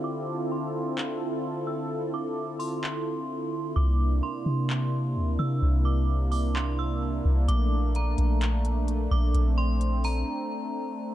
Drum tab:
HH |--------|---o----|--------|---o----|
CP |----x---|----x---|----x---|----x---|

HH |x-xxxxx-|x-xo----|
CP |----x---|--------|